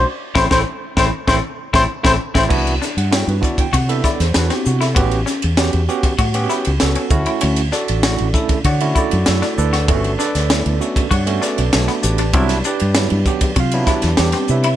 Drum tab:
CC |----------------|x---------------|----------------|----------------|
RD |----------------|-x-xxx-xxx-xxx-x|xx-xxx-xxx-xxx-x|xx-xxx-xxx-xxx-x|
HH |----------------|--p---p---p---p-|--p---p---p---p-|--p---p---p---p-|
SD |--oo--o-o--o-o-o|--o-o-----oooo-o|--o-o-----o-o---|--o-o-------oo-o|
BD |--oo--o-o--o-o-o|o-----ooo-o-----|o------oo-----o-|------ooo-o-----|

CC |----------------|----------------|
RD |xx-xxx-xxx-xxx-x|xx-xxx-xxx-xxx-x|
HH |--p---p---p---p-|--p---p---p---p-|
SD |--ooo-----o-oo--|-o--o-----oooo--|
BD |o------oo-------|o-----ooo-o-----|